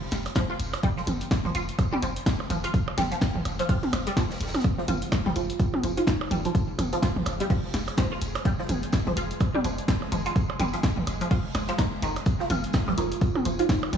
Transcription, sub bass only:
0.12 0.28 F1 medium
0.60 0.76 F1 loud
1.07 1.23 F1 loud
1.45 1.51 F1 medium
1.55 1.71 F1 medium
2.03 2.18 F1 medium
2.50 2.66 F1 loud
2.98 3.14 F1 loud
3.35 3.41 F1 medium
3.45 3.61 F1 medium
3.93 4.09 F1 medium
4.41 4.57 F1 medium
4.88 5.04 F1 loud
5.26 5.32 F1 loud
5.36 5.52 F1 medium
5.83 5.99 F1 medium
6.31 6.47 F1 loud
6.79 6.95 F1 loud
7.16 7.22 F1 loud
7.26 7.42 F1 loud
7.74 7.90 F1 medium
8.22 8.38 F1 loud
8.69 8.85 F1 loud
9.07 9.13 F1 medium
9.17 9.33 F1 loud
9.64 9.80 F1 medium
10.12 10.28 F1 loud
10.60 10.76 F1 loud
10.97 11.03 F1 medium
11.07 11.23 F1 medium
11.55 11.71 F1 medium
12.02 12.18 F1 loud
12.50 12.66 F1 loud
12.88 12.94 F1 medium
12.98 13.14 F1 loud
13.45 13.61 F1 medium
13.93 13.97 F1 loud

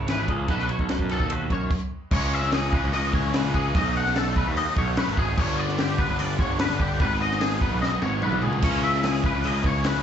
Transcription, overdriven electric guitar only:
0.07 0.28 G#3 medium
0.07 0.28 C#4 medium
0.07 0.28 E4 medium
0.07 0.27 G#4 loud
0.28 muted overdriven electric guitar stroke medium
0.49 0.70 F#3 medium
0.49 0.69 B3 medium
0.49 0.69 D#4 medium
0.49 0.69 A4 loud
0.70 muted overdriven electric guitar stroke medium
0.90 muted overdriven electric guitar stroke soft
1.11 1.30 F#3 medium
1.11 1.31 B3 medium
1.11 1.31 D#4 medium
1.11 1.31 A4 medium
1.31 muted overdriven electric guitar stroke soft
1.51 muted overdriven electric guitar stroke soft
2.11 2.72 C#3 medium
2.11 2.72 E3 medium
2.11 2.73 G#3 loud
2.11 2.73 C#4 loud
2.74 3.32 C#3 medium
2.74 3.34 E3 medium
2.74 3.34 G#3 medium
2.74 3.34 C#4 medium
3.34 3.73 C#3 medium
3.34 3.74 E3 medium
3.34 3.75 G#3 medium
3.34 3.75 C#4 medium
3.75 4.35 B2 medium
3.75 4.38 F#3 medium
3.75 4.36 A3 medium
3.75 4.34 D#4 loud
4.35 4.98 F#3 medium
4.35 4.96 A3 medium
4.35 4.96 D#4 medium
4.40 4.96 B2 medium
4.97 5.37 B2 medium
4.97 5.39 F#3 medium
4.97 5.38 A3 medium
4.97 5.39 D#4 medium
5.38 5.98 G2 medium
5.38 5.98 D3 loud
5.38 5.99 G3 medium
5.38 5.99 B3 medium
5.38 5.97 D4 loud
5.98 6.57 G2 medium
5.98 6.58 D3 medium
5.98 6.59 G3 medium
5.98 6.61 B3 medium
5.98 6.58 D4 medium
6.59 6.99 G2 medium
6.59 6.99 D3 medium
6.59 7.00 G3 medium
6.59 7.02 B3 medium
6.59 7.01 D4 medium
7.00 7.60 G#2 medium
7.00 7.60 D#3 medium
7.00 7.63 G#3 medium
7.00 7.62 B3 loud
7.00 7.60 D#4 loud
7.61 8.20 G#2 medium
7.61 8.21 D#3 medium
7.61 8.22 G#3 medium
7.61 8.24 B3 medium
7.61 8.21 D#4 medium
8.21 8.61 G#2 medium
8.21 8.61 D#3 medium
8.21 8.63 G#3 medium
8.21 8.64 B3 loud
8.21 8.63 D#4 medium
8.62 9.22 C#3 medium
8.62 9.23 G#3 medium
8.62 9.24 C#4 loud
8.62 9.23 E4 loud
9.24 9.83 C#3 medium
9.24 9.85 G#3 medium
9.24 9.85 C#4 medium
9.24 9.84 E4 medium
9.84 10.03 C#3 medium
9.84 10.03 G#3 medium
9.84 10.03 C#4 loud
9.84 10.03 E4 medium

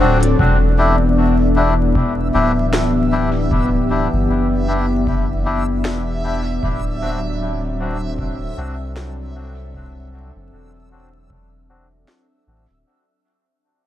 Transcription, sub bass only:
0.00 0.35 D1 medium
0.39 2.31 E1 loud
2.34 4.08 D1 medium
4.13 4.27 G1 medium
4.29 5.86 F#1 medium
5.85 6.59 E1 medium
6.63 8.54 D1 medium
8.57 10.31 C2 medium
10.36 10.50 F#1 medium
10.52 12.05 E1 medium
12.47 12.67 A1 medium
12.69 12.84 D1 medium

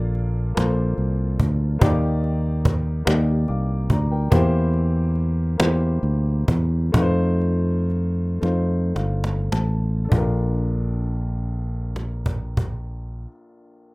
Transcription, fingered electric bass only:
0.00 0.52 A#1 medium
0.57 0.95 A#1 medium
0.98 1.36 C2 medium
1.40 1.78 D2 medium
1.81 3.02 D#2 medium
3.07 3.45 D#2 medium
3.49 3.87 C2 medium
3.90 4.28 D2 medium
4.32 5.55 E2 medium
5.60 6.00 E2 medium
6.03 6.44 D2 medium
6.48 6.90 E2 medium
6.94 8.38 F2 medium
8.42 8.92 F2 medium
8.96 9.48 G1 medium
9.53 10.08 A1 medium
10.12 13.25 A#1 medium

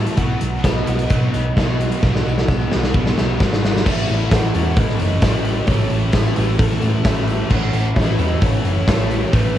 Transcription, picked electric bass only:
0.17 0.35 B1 medium
0.42 0.59 B1 medium
0.64 0.82 B1 medium
0.87 1.05 B1 medium
1.11 1.28 B2 medium
1.34 1.52 B1 medium
1.56 1.91 B1 medium
2.03 2.20 B1 loud
2.26 2.43 B1 medium
2.48 2.66 B1 medium
2.75 2.91 B1 loud
2.94 3.12 B1 medium
3.20 3.36 B1 medium
3.41 3.86 G#1 medium
3.86 4.04 A1 medium
4.10 4.28 A1 medium
4.31 4.50 A1 loud
4.55 4.73 E2 loud
4.77 4.95 A1 loud
5.00 5.18 F#1 medium
5.22 5.59 A1 medium
5.67 5.86 A1 loud
5.91 6.09 A1 loud
6.13 6.32 A1 loud
6.38 6.56 A1 loud
6.59 6.78 A1 loud
6.83 7.01 A2 medium
7.05 7.41 A1 medium
7.51 7.69 A1 loud
7.73 7.91 A1 loud
7.96 8.14 A1 medium
8.19 8.37 E2 medium
8.42 8.60 A1 loud
8.65 8.83 F#1 medium
8.87 9.23 A1 loud
9.33 9.51 A1 medium

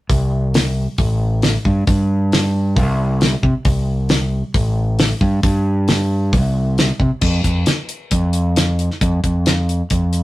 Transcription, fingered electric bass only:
0.09 0.86 C2 medium
0.98 1.56 A1 medium
1.65 1.84 G2 medium
1.87 2.78 G2 medium
2.76 3.34 C2 medium
3.43 3.53 C3 medium
3.65 4.42 C2 medium
4.54 5.12 A1 medium
5.21 5.40 G2 medium
5.43 6.34 G2 medium
6.32 6.90 C2 medium
7.00 7.09 C3 medium
7.21 7.41 F2 medium
7.44 7.64 F2 medium
8.12 8.88 F2 medium
9.02 9.20 F2 medium
9.24 9.81 F2 medium
9.91 10.23 F2 medium

